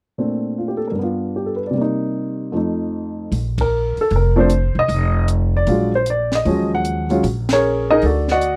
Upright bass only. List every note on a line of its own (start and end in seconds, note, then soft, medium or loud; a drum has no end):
3.32 3.93 A#1 medium
3.97 muted upright bass stroke soft
4.11 4.72 F1 medium
4.75 4.88 E1 medium
4.88 5.63 F1 medium
5.67 6.41 A#1 medium
6.45 7.20 D#2 medium
7.23 7.98 A#1 medium
8.02 8.56 D2 medium